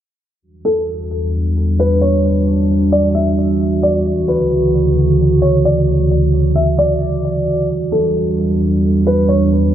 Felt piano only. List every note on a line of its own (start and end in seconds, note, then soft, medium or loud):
0.65 0.87 A4 medium
1.79 2.01 B4 medium
2.01 2.23 C#5 medium
2.92 3.14 D5 medium
3.15 3.79 E5 medium
3.83 4.05 D5 medium
4.28 4.50 B4 medium
5.42 5.64 C#5 medium
5.65 5.87 D5 medium
6.56 6.77 E5 medium
6.78 7.65 D5 medium
7.92 8.14 A4 medium
9.07 9.28 B4 medium
9.28 9.50 C#5 medium